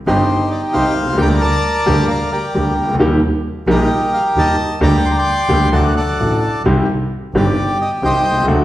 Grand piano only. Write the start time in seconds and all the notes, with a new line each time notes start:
0.07 G1 G2 D#3 G3 C4 G4
0.74 C2 C3 D#3 G3 C4 G4
1.03 B1
1.07 C2
1.13 C#2
1.17 D2 D3 G3 A#3 G4
1.86 D2 D3 G3 A#3 G4
2.54 D2 D3 G3 A#3 G4
2.84 C2
2.88 C#2
2.94 D2
2.99 D#2 D#3 G3 A#3 G4
3.67 A#1 A#2 D#3 G3 A#3 G4
4.37 D#2 D#3 G3 A#3 G4
4.81 D2 D3 G3 A#3 G4
5.49 D2 D3 G3 A#3 G4
5.72 D2 D3 F#3 A3 F#4
6.20 A1 A2 D3 F#3 A3 F#4
6.65 C2 C3 D#3 G3 C4 G4
7.35 G1 G2 D#3 G3 C4 G4
8.02 C2 C3 D#3 G3 C4 G4
8.31 B1
8.37 C2
8.42 C#2
8.47 D2 D3 F#3 A3 F#4